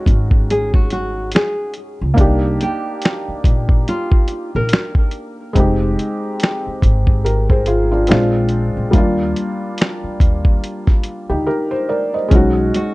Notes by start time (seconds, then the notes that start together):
Already playing: G#3 C#4 D#4 F#4 G4
0.06 G#1, kick, closed hi-hat
0.31 kick
0.50 G#4, closed hi-hat
0.74 F#4, kick
0.90 F#4, closed hi-hat
1.32 G#4, closed hi-hat
1.36 finger snap, snare
1.74 closed hi-hat
2.01 C#2
2.14 A#3 D4, kick, closed hi-hat
2.18 C2 D#4 G4
2.61 G4, closed hi-hat
3.02 finger snap, snare, closed hi-hat
3.28 muted upright bass stroke
3.44 A#1, kick, closed hi-hat
3.69 kick
3.88 F4, closed hi-hat
4.12 kick
4.28 closed hi-hat
4.55 A#1 A#4
4.69 closed hi-hat
4.73 finger snap, snare
4.95 kick
5.11 closed hi-hat
5.53 F1 G#3 C4, kick, closed hi-hat
5.57 D#4 G4
5.99 closed hi-hat
6.40 finger snap, snare, closed hi-hat
6.67 muted upright bass stroke
6.82 G#1, kick, closed hi-hat
7.07 kick
7.25 G4 A#4, closed hi-hat
7.50 G#4 C5, kick
7.66 F4 G#4, closed hi-hat
7.91 D4 F4
8.07 A#1 G#3 C4 D4, closed hi-hat
8.11 F4, finger snap, snare
8.49 closed hi-hat
8.77 A#1
8.91 D#2 G3 A#3, kick, closed hi-hat
8.95 D4 F4
9.36 closed hi-hat
9.78 finger snap, snare, closed hi-hat
10.04 muted upright bass stroke
10.20 D#2, kick, closed hi-hat
10.45 kick
10.64 closed hi-hat
10.87 kick, snare
11.03 closed hi-hat
11.30 D2 D#4 G4
11.46 G4 A#4
11.71 C5
11.89 A#4 D5
12.14 C5 D#5
12.28 B1 G#3 C#4 D#4, kick, closed hi-hat
12.35 F#4
12.74 F#4, closed hi-hat